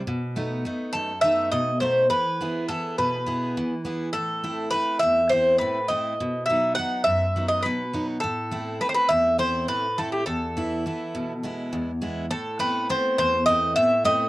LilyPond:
<<
  \new Staff \with { instrumentName = "Bouzouki" } { \time 7/8 \tempo 4 = 103 r4. a'8 e''8 dis''8 c''8 | b'4 a'8 b'4. r8 | a'4 b'8 e''8 c''8 b'8 dis''8~ | dis''8 e''8 fis''8 e''8. dis''16 b'8. r16 |
a'4 b'32 c''32 b'16 e''8 c''8 b'8 a'16 g'16 | a'2~ a'8 r4 | a'8 b'8 c''8 c''8 dis''8 e''8 dis''8 | }
  \new Staff \with { instrumentName = "Steel-string acoustic guitar" } { \time 7/8 b,8 <a b dis'>8 <a b dis'>8 fis,8 <a b dis'>8 b,8 <a b dis'>8 | e8 <b e' gis'>8 <b e' gis'>8 b,8 <b e' gis'>8 e8 <b e' gis'>8 | a,8 <a c' e'>8 <a c' e'>8 e,8 <a c' e'>8 a,8 <a c' e'>8 | b,8 <fis b dis'>8 <fis b dis'>8 fis,8 <fis b dis'>8 b,8 <fis b dis'>8 |
a,8 <a c' e'>8 <a c' e'>8 e,8 <a c' e'>8 a,8 <a c' e'>8 | e,8 <e b e'>8 <e b e'>8 b,8 <gis b e'>8 e,8 <gis b e'>8 | a,8 <a b c'>8 <a b c'>8 e,8 <a b c'>8 a,8 <a b c'>8 | }
>>